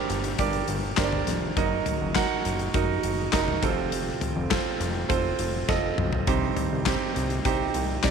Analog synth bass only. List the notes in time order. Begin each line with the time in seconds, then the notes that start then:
0.10 G1
0.39 G1
0.68 G1
0.98 G1
1.27 F1
1.57 F#1
2.01 F#1
2.45 F#1
2.74 F#1
3.04 F#1
3.33 F#1
3.62 F1
4.36 F1
4.80 F1
5.10 F1
5.39 F1
5.69 F1
5.99 B1
6.27 C2
6.72 C2
7.16 C2
7.45 C2
7.75 C2
8.04 C2